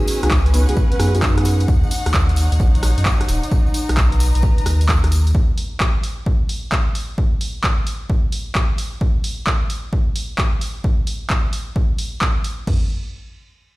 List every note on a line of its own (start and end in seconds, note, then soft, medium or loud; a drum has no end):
0.00 0.19 B3 medium
0.00 2.43 C#4 medium
0.00 0.19 D#4 medium
0.00 0.47 D#4 medium
0.00 0.19 F#4 medium
0.00 0.19 G#4 medium
0.00 0.47 G#4 medium
0.00 1.68 B4 loud
0.00 0.47 E6 medium
0.08 open hi-hat loud
0.08 tambourine loud
0.23 0.66 C#2 medium
0.23 0.30 B3 medium
0.23 0.30 D#4 medium
0.23 0.30 F#4 medium
0.23 0.30 G#4 medium
0.23 cross-stick medium
0.23 closed hi-hat medium
0.23 tambourine soft
0.31 kick loud
0.31 clap loud
0.31 tambourine soft
0.46 closed hi-hat soft
0.46 tambourine soft
0.54 0.65 B3 medium
0.54 0.65 D#4 medium
0.54 0.65 F#4 medium
0.54 0.65 B4 medium
0.54 4.26 F#5 medium
0.54 open hi-hat medium
0.54 tambourine loud
0.69 0.76 C#2 loud
0.69 0.76 B3 medium
0.69 0.76 D#4 medium
0.69 0.76 F#4 medium
0.69 0.76 G#4 medium
0.69 closed hi-hat medium
0.69 tambourine soft
0.77 kick loud
0.77 tambourine medium
0.91 closed hi-hat soft
0.91 tambourine soft
1.00 1.67 F#2 loud
1.00 1.12 B3 medium
1.00 1.12 D#4 medium
1.00 1.12 F#4 medium
1.00 1.12 G#4 medium
1.00 cross-stick medium
1.00 open hi-hat loud
1.00 tambourine medium
1.15 1.66 B3 medium
1.15 1.66 D#4 medium
1.15 1.66 F#4 medium
1.15 1.66 G#4 medium
1.15 closed hi-hat medium
1.15 tambourine soft
1.22 kick loud
1.22 clap loud
1.22 tambourine medium
1.38 cross-stick medium
1.38 closed hi-hat soft
1.38 tambourine soft
1.45 open hi-hat medium
1.45 tambourine loud
1.60 closed hi-hat medium
1.60 tambourine soft
1.68 1.81 D#2 medium
1.68 5.35 D#4 medium
1.68 kick loud
1.68 tambourine medium
1.83 tambourine soft
1.91 4.26 C#5 medium
1.91 open hi-hat medium
1.91 tambourine loud
2.06 2.49 D#2 medium
2.06 cross-stick medium
2.06 closed hi-hat medium
2.06 tambourine soft
2.14 kick loud
2.14 clap loud
2.14 tambourine medium
2.29 closed hi-hat soft
2.29 tambourine soft
2.36 open hi-hat medium
2.36 tambourine medium
2.52 2.59 D#2 loud
2.52 closed hi-hat medium
2.52 tambourine soft
2.60 2.95 A#1 medium
2.60 kick loud
2.60 tambourine medium
2.75 closed hi-hat soft
2.75 tambourine soft
2.83 cross-stick medium
2.83 open hi-hat loud
2.83 tambourine loud
2.98 3.05 F#2 medium
2.98 closed hi-hat medium
2.98 tambourine soft
3.05 kick loud
3.05 clap loud
3.05 tambourine medium
3.21 cross-stick medium
3.21 closed hi-hat soft
3.21 tambourine soft
3.28 3.42 D#1 medium
3.28 open hi-hat medium
3.28 tambourine loud
3.43 closed hi-hat medium
3.43 tambourine soft
3.51 kick loud
3.51 tambourine medium
3.67 tambourine soft
3.74 open hi-hat medium
3.74 tambourine medium
3.82 5.35 A#5 medium
3.88 4.32 B1 medium
3.88 5.35 B4 medium
3.88 cross-stick medium
3.88 closed hi-hat medium
3.88 tambourine soft
3.96 kick loud
3.96 clap loud
3.96 tambourine soft
4.12 closed hi-hat soft
4.12 tambourine soft
4.20 open hi-hat medium
4.20 tambourine medium
4.35 4.42 B1 loud
4.35 closed hi-hat medium
4.35 tambourine soft
4.42 kick loud
4.42 tambourine soft
4.58 closed hi-hat soft
4.58 tambourine soft
4.66 5.33 D#2 loud
4.66 cross-stick medium
4.66 open hi-hat loud
4.66 tambourine medium
4.81 closed hi-hat medium
4.81 tambourine soft
4.89 kick loud
4.89 clap loud
4.89 tambourine medium
5.04 cross-stick medium
5.04 closed hi-hat soft
5.04 tambourine soft
5.12 open hi-hat medium
5.12 tambourine medium
5.27 closed hi-hat medium
5.27 tambourine soft
5.35 kick loud
5.58 open hi-hat medium
5.80 kick loud
5.80 clap loud
6.03 open hi-hat medium
6.26 kick loud
6.49 open hi-hat medium
6.72 kick loud
6.72 clap loud
6.95 open hi-hat medium
7.18 kick loud
7.41 open hi-hat medium
7.64 kick loud
7.64 clap loud
7.87 open hi-hat medium
8.10 kick loud
8.32 open hi-hat loud
8.55 kick loud
8.55 clap loud
8.78 open hi-hat medium
9.01 kick loud
9.24 open hi-hat loud
9.47 kick loud
9.47 clap loud
9.70 open hi-hat medium
9.93 kick loud
10.16 open hi-hat loud
10.38 kick loud
10.38 clap loud
10.61 open hi-hat medium
10.84 kick loud
11.07 open hi-hat loud
11.30 kick loud
11.30 clap loud
11.53 open hi-hat medium
11.76 kick loud
11.98 open hi-hat loud
12.21 kick loud
12.21 clap loud
12.44 open hi-hat medium
12.67 kick loud
12.67 floor tom loud
12.67 crash medium